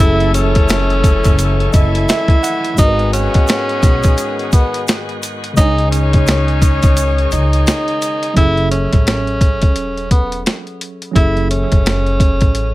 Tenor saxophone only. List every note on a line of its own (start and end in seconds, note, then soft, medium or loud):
0.00 0.31 E4 loud
0.34 1.70 C#4 loud
1.74 2.75 E4 medium
2.79 3.10 D#4 loud
3.13 4.49 C#4 loud
4.53 4.84 B3 medium
5.57 5.89 D#4 loud
5.91 7.27 C#4 medium
7.32 8.33 D#4 medium
8.37 8.68 E4 loud
8.71 10.07 C#4 loud
10.11 10.42 B3 medium
11.16 11.47 E4 loud
11.50 12.74 C#4 medium